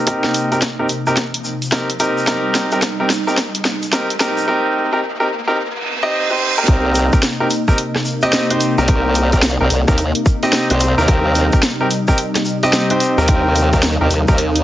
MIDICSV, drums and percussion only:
0, 0, Header, 1, 2, 480
1, 0, Start_track
1, 0, Key_signature, -3, "minor"
1, 0, Tempo, 550459
1, 64, Time_signature, 4, 2, 24, 8
1, 12762, End_track
2, 0, Start_track
2, 0, Title_t, "Drums"
2, 58, Note_on_c, 9, 42, 78
2, 63, Note_on_c, 9, 36, 96
2, 67, Note_on_c, 9, 82, 41
2, 146, Note_off_c, 9, 42, 0
2, 150, Note_off_c, 9, 36, 0
2, 154, Note_off_c, 9, 82, 0
2, 210, Note_on_c, 9, 38, 61
2, 298, Note_off_c, 9, 38, 0
2, 300, Note_on_c, 9, 42, 69
2, 300, Note_on_c, 9, 82, 92
2, 387, Note_off_c, 9, 42, 0
2, 387, Note_off_c, 9, 82, 0
2, 452, Note_on_c, 9, 42, 37
2, 457, Note_on_c, 9, 82, 52
2, 537, Note_off_c, 9, 82, 0
2, 537, Note_on_c, 9, 82, 41
2, 539, Note_off_c, 9, 42, 0
2, 539, Note_on_c, 9, 38, 62
2, 539, Note_on_c, 9, 42, 82
2, 543, Note_on_c, 9, 36, 98
2, 624, Note_off_c, 9, 82, 0
2, 626, Note_off_c, 9, 38, 0
2, 626, Note_off_c, 9, 42, 0
2, 630, Note_off_c, 9, 36, 0
2, 779, Note_on_c, 9, 42, 68
2, 779, Note_on_c, 9, 82, 85
2, 866, Note_off_c, 9, 42, 0
2, 867, Note_off_c, 9, 82, 0
2, 931, Note_on_c, 9, 37, 38
2, 931, Note_on_c, 9, 82, 55
2, 1017, Note_off_c, 9, 82, 0
2, 1017, Note_on_c, 9, 82, 36
2, 1018, Note_off_c, 9, 37, 0
2, 1018, Note_on_c, 9, 38, 67
2, 1018, Note_on_c, 9, 42, 83
2, 1022, Note_on_c, 9, 36, 96
2, 1104, Note_off_c, 9, 82, 0
2, 1105, Note_off_c, 9, 38, 0
2, 1105, Note_off_c, 9, 42, 0
2, 1110, Note_off_c, 9, 36, 0
2, 1170, Note_on_c, 9, 42, 70
2, 1257, Note_off_c, 9, 42, 0
2, 1260, Note_on_c, 9, 82, 82
2, 1347, Note_off_c, 9, 82, 0
2, 1413, Note_on_c, 9, 42, 39
2, 1415, Note_on_c, 9, 82, 53
2, 1500, Note_off_c, 9, 42, 0
2, 1501, Note_on_c, 9, 38, 70
2, 1501, Note_on_c, 9, 42, 83
2, 1502, Note_off_c, 9, 82, 0
2, 1502, Note_on_c, 9, 36, 94
2, 1503, Note_on_c, 9, 82, 43
2, 1588, Note_off_c, 9, 38, 0
2, 1588, Note_off_c, 9, 42, 0
2, 1589, Note_off_c, 9, 36, 0
2, 1590, Note_off_c, 9, 82, 0
2, 1654, Note_on_c, 9, 42, 64
2, 1741, Note_off_c, 9, 42, 0
2, 1743, Note_on_c, 9, 42, 72
2, 1744, Note_on_c, 9, 82, 101
2, 1830, Note_off_c, 9, 42, 0
2, 1832, Note_off_c, 9, 82, 0
2, 1897, Note_on_c, 9, 82, 56
2, 1982, Note_off_c, 9, 82, 0
2, 1982, Note_on_c, 9, 36, 98
2, 1982, Note_on_c, 9, 38, 74
2, 1982, Note_on_c, 9, 42, 81
2, 1982, Note_on_c, 9, 82, 38
2, 2069, Note_off_c, 9, 38, 0
2, 2069, Note_off_c, 9, 42, 0
2, 2069, Note_off_c, 9, 82, 0
2, 2070, Note_off_c, 9, 36, 0
2, 2221, Note_on_c, 9, 82, 87
2, 2223, Note_on_c, 9, 38, 77
2, 2223, Note_on_c, 9, 42, 69
2, 2308, Note_off_c, 9, 82, 0
2, 2310, Note_off_c, 9, 38, 0
2, 2310, Note_off_c, 9, 42, 0
2, 2366, Note_on_c, 9, 82, 59
2, 2371, Note_on_c, 9, 42, 38
2, 2453, Note_off_c, 9, 82, 0
2, 2458, Note_off_c, 9, 42, 0
2, 2460, Note_on_c, 9, 82, 38
2, 2461, Note_on_c, 9, 38, 78
2, 2461, Note_on_c, 9, 42, 81
2, 2464, Note_on_c, 9, 36, 93
2, 2547, Note_off_c, 9, 82, 0
2, 2548, Note_off_c, 9, 38, 0
2, 2548, Note_off_c, 9, 42, 0
2, 2551, Note_off_c, 9, 36, 0
2, 2703, Note_on_c, 9, 38, 79
2, 2703, Note_on_c, 9, 42, 68
2, 2711, Note_on_c, 9, 82, 82
2, 2790, Note_off_c, 9, 38, 0
2, 2790, Note_off_c, 9, 42, 0
2, 2798, Note_off_c, 9, 82, 0
2, 2860, Note_on_c, 9, 82, 57
2, 2943, Note_on_c, 9, 38, 87
2, 2943, Note_on_c, 9, 42, 84
2, 2945, Note_on_c, 9, 36, 98
2, 2948, Note_off_c, 9, 82, 0
2, 2949, Note_on_c, 9, 82, 43
2, 3030, Note_off_c, 9, 38, 0
2, 3030, Note_off_c, 9, 42, 0
2, 3033, Note_off_c, 9, 36, 0
2, 3036, Note_off_c, 9, 82, 0
2, 3094, Note_on_c, 9, 42, 71
2, 3181, Note_off_c, 9, 42, 0
2, 3183, Note_on_c, 9, 38, 83
2, 3183, Note_on_c, 9, 82, 94
2, 3270, Note_off_c, 9, 38, 0
2, 3270, Note_off_c, 9, 82, 0
2, 3336, Note_on_c, 9, 82, 53
2, 3337, Note_on_c, 9, 42, 40
2, 3423, Note_off_c, 9, 82, 0
2, 3424, Note_off_c, 9, 42, 0
2, 3424, Note_on_c, 9, 38, 88
2, 3424, Note_on_c, 9, 42, 84
2, 3425, Note_on_c, 9, 36, 94
2, 3427, Note_on_c, 9, 82, 42
2, 3511, Note_off_c, 9, 38, 0
2, 3511, Note_off_c, 9, 42, 0
2, 3513, Note_off_c, 9, 36, 0
2, 3514, Note_off_c, 9, 82, 0
2, 3578, Note_on_c, 9, 42, 61
2, 3663, Note_on_c, 9, 82, 90
2, 3665, Note_off_c, 9, 42, 0
2, 3666, Note_on_c, 9, 38, 92
2, 3666, Note_on_c, 9, 42, 72
2, 3750, Note_off_c, 9, 82, 0
2, 3753, Note_off_c, 9, 38, 0
2, 3753, Note_off_c, 9, 42, 0
2, 3813, Note_on_c, 9, 82, 64
2, 3900, Note_off_c, 9, 82, 0
2, 5813, Note_on_c, 9, 82, 40
2, 5821, Note_on_c, 9, 42, 86
2, 5825, Note_on_c, 9, 36, 124
2, 5900, Note_off_c, 9, 82, 0
2, 5908, Note_off_c, 9, 42, 0
2, 5912, Note_off_c, 9, 36, 0
2, 6057, Note_on_c, 9, 82, 85
2, 6063, Note_on_c, 9, 42, 68
2, 6144, Note_off_c, 9, 82, 0
2, 6150, Note_off_c, 9, 42, 0
2, 6212, Note_on_c, 9, 82, 60
2, 6216, Note_on_c, 9, 36, 108
2, 6216, Note_on_c, 9, 42, 38
2, 6300, Note_off_c, 9, 82, 0
2, 6303, Note_off_c, 9, 42, 0
2, 6303, Note_on_c, 9, 82, 40
2, 6304, Note_off_c, 9, 36, 0
2, 6304, Note_on_c, 9, 38, 127
2, 6304, Note_on_c, 9, 42, 84
2, 6390, Note_off_c, 9, 82, 0
2, 6391, Note_off_c, 9, 38, 0
2, 6391, Note_off_c, 9, 42, 0
2, 6544, Note_on_c, 9, 42, 69
2, 6545, Note_on_c, 9, 82, 102
2, 6631, Note_off_c, 9, 42, 0
2, 6632, Note_off_c, 9, 82, 0
2, 6695, Note_on_c, 9, 82, 52
2, 6696, Note_on_c, 9, 37, 41
2, 6697, Note_on_c, 9, 36, 62
2, 6782, Note_off_c, 9, 82, 0
2, 6783, Note_off_c, 9, 37, 0
2, 6784, Note_off_c, 9, 36, 0
2, 6785, Note_on_c, 9, 42, 85
2, 6785, Note_on_c, 9, 82, 37
2, 6872, Note_off_c, 9, 42, 0
2, 6872, Note_off_c, 9, 82, 0
2, 6938, Note_on_c, 9, 37, 58
2, 6938, Note_on_c, 9, 38, 38
2, 7021, Note_on_c, 9, 82, 102
2, 7025, Note_off_c, 9, 37, 0
2, 7025, Note_off_c, 9, 38, 0
2, 7108, Note_off_c, 9, 82, 0
2, 7166, Note_on_c, 9, 82, 52
2, 7176, Note_on_c, 9, 42, 41
2, 7253, Note_off_c, 9, 82, 0
2, 7256, Note_on_c, 9, 82, 38
2, 7263, Note_off_c, 9, 42, 0
2, 7263, Note_on_c, 9, 38, 122
2, 7263, Note_on_c, 9, 42, 83
2, 7343, Note_off_c, 9, 82, 0
2, 7350, Note_off_c, 9, 38, 0
2, 7350, Note_off_c, 9, 42, 0
2, 7415, Note_on_c, 9, 42, 62
2, 7503, Note_off_c, 9, 42, 0
2, 7503, Note_on_c, 9, 82, 100
2, 7504, Note_on_c, 9, 42, 74
2, 7590, Note_off_c, 9, 82, 0
2, 7591, Note_off_c, 9, 42, 0
2, 7656, Note_on_c, 9, 82, 51
2, 7740, Note_off_c, 9, 82, 0
2, 7740, Note_on_c, 9, 82, 41
2, 7742, Note_on_c, 9, 42, 85
2, 7746, Note_on_c, 9, 36, 127
2, 7828, Note_off_c, 9, 82, 0
2, 7829, Note_off_c, 9, 42, 0
2, 7833, Note_off_c, 9, 36, 0
2, 7980, Note_on_c, 9, 42, 71
2, 7981, Note_on_c, 9, 82, 94
2, 8067, Note_off_c, 9, 42, 0
2, 8068, Note_off_c, 9, 82, 0
2, 8129, Note_on_c, 9, 42, 41
2, 8135, Note_on_c, 9, 82, 60
2, 8137, Note_on_c, 9, 36, 62
2, 8216, Note_off_c, 9, 42, 0
2, 8219, Note_on_c, 9, 38, 127
2, 8219, Note_on_c, 9, 42, 89
2, 8222, Note_off_c, 9, 82, 0
2, 8224, Note_off_c, 9, 36, 0
2, 8228, Note_on_c, 9, 82, 41
2, 8306, Note_off_c, 9, 38, 0
2, 8306, Note_off_c, 9, 42, 0
2, 8315, Note_off_c, 9, 82, 0
2, 8460, Note_on_c, 9, 42, 69
2, 8465, Note_on_c, 9, 82, 95
2, 8547, Note_off_c, 9, 42, 0
2, 8552, Note_off_c, 9, 82, 0
2, 8612, Note_on_c, 9, 37, 39
2, 8613, Note_on_c, 9, 82, 54
2, 8616, Note_on_c, 9, 36, 118
2, 8699, Note_off_c, 9, 37, 0
2, 8700, Note_off_c, 9, 82, 0
2, 8700, Note_on_c, 9, 42, 84
2, 8701, Note_on_c, 9, 82, 42
2, 8704, Note_off_c, 9, 36, 0
2, 8787, Note_off_c, 9, 42, 0
2, 8788, Note_off_c, 9, 82, 0
2, 8851, Note_on_c, 9, 42, 72
2, 8938, Note_off_c, 9, 42, 0
2, 8945, Note_on_c, 9, 36, 115
2, 8946, Note_on_c, 9, 82, 97
2, 9032, Note_off_c, 9, 36, 0
2, 9033, Note_off_c, 9, 82, 0
2, 9092, Note_on_c, 9, 42, 42
2, 9100, Note_on_c, 9, 82, 54
2, 9179, Note_off_c, 9, 42, 0
2, 9181, Note_on_c, 9, 38, 126
2, 9181, Note_on_c, 9, 42, 83
2, 9187, Note_off_c, 9, 82, 0
2, 9188, Note_on_c, 9, 82, 38
2, 9268, Note_off_c, 9, 38, 0
2, 9268, Note_off_c, 9, 42, 0
2, 9276, Note_off_c, 9, 82, 0
2, 9331, Note_on_c, 9, 42, 66
2, 9418, Note_off_c, 9, 42, 0
2, 9420, Note_on_c, 9, 82, 99
2, 9422, Note_on_c, 9, 42, 74
2, 9508, Note_off_c, 9, 82, 0
2, 9509, Note_off_c, 9, 42, 0
2, 9578, Note_on_c, 9, 82, 57
2, 9658, Note_off_c, 9, 82, 0
2, 9658, Note_on_c, 9, 82, 39
2, 9662, Note_on_c, 9, 42, 85
2, 9664, Note_on_c, 9, 36, 125
2, 9745, Note_off_c, 9, 82, 0
2, 9749, Note_off_c, 9, 42, 0
2, 9751, Note_off_c, 9, 36, 0
2, 9899, Note_on_c, 9, 82, 96
2, 9900, Note_on_c, 9, 42, 67
2, 9986, Note_off_c, 9, 82, 0
2, 9987, Note_off_c, 9, 42, 0
2, 10049, Note_on_c, 9, 82, 63
2, 10050, Note_on_c, 9, 42, 38
2, 10055, Note_on_c, 9, 36, 109
2, 10136, Note_off_c, 9, 82, 0
2, 10137, Note_off_c, 9, 42, 0
2, 10140, Note_on_c, 9, 38, 127
2, 10140, Note_on_c, 9, 42, 85
2, 10142, Note_off_c, 9, 36, 0
2, 10144, Note_on_c, 9, 82, 42
2, 10227, Note_off_c, 9, 38, 0
2, 10227, Note_off_c, 9, 42, 0
2, 10232, Note_off_c, 9, 82, 0
2, 10381, Note_on_c, 9, 42, 68
2, 10386, Note_on_c, 9, 82, 97
2, 10469, Note_off_c, 9, 42, 0
2, 10473, Note_off_c, 9, 82, 0
2, 10529, Note_on_c, 9, 82, 61
2, 10531, Note_on_c, 9, 37, 37
2, 10535, Note_on_c, 9, 36, 66
2, 10617, Note_off_c, 9, 82, 0
2, 10618, Note_off_c, 9, 37, 0
2, 10620, Note_on_c, 9, 42, 86
2, 10621, Note_on_c, 9, 82, 46
2, 10622, Note_off_c, 9, 36, 0
2, 10707, Note_off_c, 9, 42, 0
2, 10708, Note_off_c, 9, 82, 0
2, 10773, Note_on_c, 9, 37, 53
2, 10773, Note_on_c, 9, 38, 41
2, 10773, Note_on_c, 9, 42, 71
2, 10858, Note_on_c, 9, 82, 94
2, 10860, Note_off_c, 9, 37, 0
2, 10860, Note_off_c, 9, 38, 0
2, 10860, Note_off_c, 9, 42, 0
2, 10946, Note_off_c, 9, 82, 0
2, 11012, Note_on_c, 9, 42, 40
2, 11020, Note_on_c, 9, 82, 59
2, 11099, Note_off_c, 9, 42, 0
2, 11102, Note_on_c, 9, 38, 122
2, 11102, Note_on_c, 9, 42, 85
2, 11107, Note_off_c, 9, 82, 0
2, 11108, Note_on_c, 9, 82, 45
2, 11189, Note_off_c, 9, 38, 0
2, 11189, Note_off_c, 9, 42, 0
2, 11196, Note_off_c, 9, 82, 0
2, 11250, Note_on_c, 9, 42, 63
2, 11337, Note_off_c, 9, 42, 0
2, 11339, Note_on_c, 9, 42, 73
2, 11354, Note_on_c, 9, 82, 90
2, 11426, Note_off_c, 9, 42, 0
2, 11441, Note_off_c, 9, 82, 0
2, 11495, Note_on_c, 9, 82, 54
2, 11578, Note_on_c, 9, 42, 80
2, 11582, Note_off_c, 9, 82, 0
2, 11584, Note_on_c, 9, 36, 127
2, 11586, Note_on_c, 9, 82, 42
2, 11666, Note_off_c, 9, 42, 0
2, 11671, Note_off_c, 9, 36, 0
2, 11674, Note_off_c, 9, 82, 0
2, 11820, Note_on_c, 9, 42, 66
2, 11824, Note_on_c, 9, 82, 87
2, 11908, Note_off_c, 9, 42, 0
2, 11911, Note_off_c, 9, 82, 0
2, 11971, Note_on_c, 9, 42, 38
2, 11974, Note_on_c, 9, 82, 56
2, 11975, Note_on_c, 9, 36, 65
2, 12058, Note_off_c, 9, 42, 0
2, 12058, Note_off_c, 9, 82, 0
2, 12058, Note_on_c, 9, 82, 38
2, 12059, Note_on_c, 9, 38, 127
2, 12059, Note_on_c, 9, 42, 81
2, 12062, Note_off_c, 9, 36, 0
2, 12146, Note_off_c, 9, 38, 0
2, 12146, Note_off_c, 9, 42, 0
2, 12146, Note_off_c, 9, 82, 0
2, 12300, Note_on_c, 9, 42, 65
2, 12301, Note_on_c, 9, 82, 104
2, 12387, Note_off_c, 9, 42, 0
2, 12388, Note_off_c, 9, 82, 0
2, 12450, Note_on_c, 9, 82, 56
2, 12453, Note_on_c, 9, 37, 38
2, 12456, Note_on_c, 9, 36, 116
2, 12537, Note_off_c, 9, 82, 0
2, 12540, Note_off_c, 9, 37, 0
2, 12541, Note_on_c, 9, 42, 81
2, 12543, Note_off_c, 9, 36, 0
2, 12628, Note_off_c, 9, 42, 0
2, 12692, Note_on_c, 9, 42, 65
2, 12762, Note_off_c, 9, 42, 0
2, 12762, End_track
0, 0, End_of_file